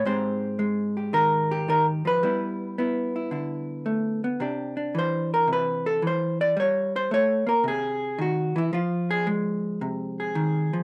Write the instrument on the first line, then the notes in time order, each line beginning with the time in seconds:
hollow-body jazz guitar
0.05 G#2 G#3 C4 G4 C5
0.59 G#3
0.97 G4
1.13 D#3 A#4
1.51 G4
1.68 D#3 A#4
2.05 F3 B4
2.23 G3 B3 E4
2.78 B3 E4
3.16 E4
3.31 D3 E4
3.86 A3
4.24 B3
4.40 C3 D4 G4
4.77 D4
4.95 E3 C5
5.34 A#4
5.48 C3
5.53 B4
5.86 A4
6.02 E3
6.07 C5
6.41 D5
6.57 G3 C#5
6.96 C5
7.11 A3 C#5
7.47 A#3 A#4
7.64 C3
7.68 G#4
8.18 D#3 F#4
8.56 E3 E4
8.73 F3 F4
9.11 G#4
9.27 G#3
9.81 C3
10.20 G#4
10.35 D#3
10.73 F3